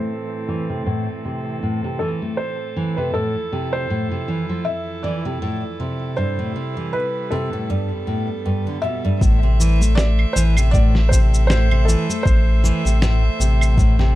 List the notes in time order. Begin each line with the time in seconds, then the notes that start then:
Already playing: A2 E3 C4 A4 C5
0.48 E3
0.70 C3
0.86 A2
1.25 C3
1.63 A2
1.84 C3
1.99 E3 A4
2.22 A3
2.37 C5
2.76 E3
2.97 C3 B4
3.14 F2 A2 E4 A4
3.52 C3
3.73 C5
3.90 A2
4.11 C3
4.28 E3
4.49 F3
4.65 E5
5.03 E3 D5
5.25 C3
5.42 A2
5.80 C3
6.17 G2 C3 G3 E4 C5
6.39 A2
6.56 C3
6.77 E3
6.93 B4
7.31 C3 A4
7.53 A2
7.70 G2 B3
8.07 A2
8.46 G2
8.67 D3
8.82 B2 E5
9.05 G2
9.21 A1 A2 A3 A4 C5 E5, kick, shaker
9.43 C3
9.60 E3, shaker
9.81 A3, shaker
9.95 D5, snare, shaker
10.19 claves
10.33 A1 E3 C5, shaker
10.57 C3, claves, shaker
10.71 A2 D5, kick, shaker
10.95 snare
11.09 C3 C5, kick, shaker
11.34 shaker
11.47 A2 C5, snare, shaker
11.71 C3, claves
11.85 E3 A4, shaker
12.09 A3, shaker
12.23 A1 C5, kick, shaker
12.64 E3, shaker
12.85 A1 C3, shaker
13.02 A2, snare, shaker
13.39 A1 C3, shaker
13.61 claves, shaker
13.77 A2, kick, shaker
13.99 C3, snare